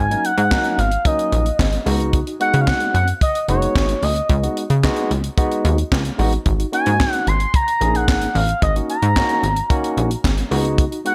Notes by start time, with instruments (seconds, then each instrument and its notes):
Already playing: analog synth bass G#1
0.00 analog synth lead G#5
0.10 tine electric piano F#3 A#3 C#4 D#4, closed hi-hat
0.25 analog synth lead F#5, closed hi-hat
0.38 analog synth bass G#2, closed hi-hat
0.51 tine electric piano F#3 A#3 C#4 D#4, kick, snare, clap
0.64 closed hi-hat
0.78 analog synth bass G#1, analog synth lead F5, closed hi-hat
0.92 closed hi-hat
1.05 tine electric piano F#3 A#3 C#4 D#4, analog synth lead D#5, kick, closed hi-hat
1.19 closed hi-hat
1.32 analog synth bass A#1, closed hi-hat
1.46 closed hi-hat
1.59 analog synth bass G#1, kick, snare, clap
1.73 closed hi-hat
1.86 analog synth bass C#2, tine electric piano G#3 B3 D#4 F#4, open hi-hat
2.00 closed hi-hat
2.13 kick, closed hi-hat
2.26 tine electric piano D#4 F#4, closed hi-hat
2.40 tine electric piano G#3 B3 D#4 F#4, analog synth lead F#5, closed hi-hat
2.54 analog synth bass C#3, closed hi-hat
2.61 analog synth lead F5
2.67 analog synth lead F#5, kick, snare, clap
2.80 closed hi-hat
2.94 analog synth bass F#2, analog synth lead F#5, closed hi-hat
3.08 closed hi-hat
3.21 analog synth lead D#5, kick, closed hi-hat
3.35 closed hi-hat
3.48 analog synth bass F#1, tine electric piano G#3 B3 D#4 F#4, analog synth lead C#5, closed hi-hat
3.62 closed hi-hat
3.76 analog synth bass G#1, kick, snare, clap
3.89 closed hi-hat
4.03 analog synth bass D2, analog synth lead D#5, open hi-hat
4.16 closed hi-hat
4.29 analog synth bass C#2, kick, closed hi-hat
4.43 tine electric piano G#3 B3 D#4 F#4, closed hi-hat
4.57 closed hi-hat
4.70 analog synth bass C#3, closed hi-hat
4.83 tine electric piano G#3 B3 D#4 F#4, kick, snare, clap
4.97 closed hi-hat
5.11 analog synth bass C#2, closed hi-hat
5.24 closed hi-hat
5.37 tine electric piano G#3 B3 D#4 F#4, kick, closed hi-hat
5.52 closed hi-hat
5.65 analog synth bass D#2, closed hi-hat
5.78 closed hi-hat
5.92 analog synth bass C#2, kick, snare, clap
6.05 closed hi-hat
6.18 analog synth bass A1, tine electric piano G#3 B3 D#4 F#4, open hi-hat
6.33 closed hi-hat
6.45 analog synth bass G#1, tine electric piano D#4 F#4, kick, closed hi-hat
6.59 tine electric piano D#4 F#4, closed hi-hat
6.72 tine electric piano A#3 C#4 D#4 F#4, analog synth lead G#5, closed hi-hat
6.86 analog synth bass G#2, closed hi-hat
7.00 kick, snare, clap
7.13 analog synth lead F#5, closed hi-hat
7.27 analog synth bass G#1, analog synth lead C6, closed hi-hat
7.40 closed hi-hat
7.54 analog synth lead A#5, kick, closed hi-hat
7.68 closed hi-hat
7.81 analog synth bass A#1, tine electric piano A#3 C#4 D#4 G#4, closed hi-hat
7.95 analog synth lead F#5, closed hi-hat
8.08 analog synth bass G#1, kick, snare, clap
8.22 closed hi-hat
8.35 analog synth bass A1, analog synth lead F5, open hi-hat
8.49 closed hi-hat
8.62 analog synth bass G#1, analog synth lead D#5, kick, closed hi-hat
8.75 tine electric piano A#3 C#4 D#4 F#4, closed hi-hat
8.90 analog synth lead A#5, closed hi-hat
9.02 analog synth bass G#2, closed hi-hat
9.16 tine electric piano A#3 C#4 D#4 F#4, kick, snare, clap
9.29 closed hi-hat
9.43 analog synth bass G#1, closed hi-hat
9.56 closed hi-hat
9.70 tine electric piano A#3 C#4 D#4 F#4, kick, closed hi-hat
9.84 closed hi-hat
9.97 analog synth bass A#1, closed hi-hat
10.11 closed hi-hat
10.24 analog synth bass G#1, kick, snare, clap
10.38 closed hi-hat
10.51 analog synth bass C#2, tine electric piano G#3 B3 D#4 F#4, open hi-hat
10.65 closed hi-hat
10.78 kick, closed hi-hat
10.91 tine electric piano D#4 F#4, closed hi-hat
11.05 tine electric piano G#3 B3 D#4 F#4, analog synth lead F#5, closed hi-hat